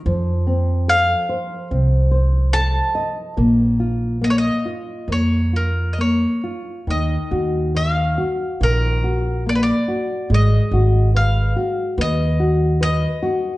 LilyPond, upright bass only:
\new Staff \with { instrumentName = "Upright bass" } { \clef bass \time 4/4 \key bes \minor \tempo 4 = 71 f,2 c,2 | bes,,2 f,2 | \key ees \minor ees,8 ees,4. bes,,2 | aes,,8 aes,,4. ees,2 | }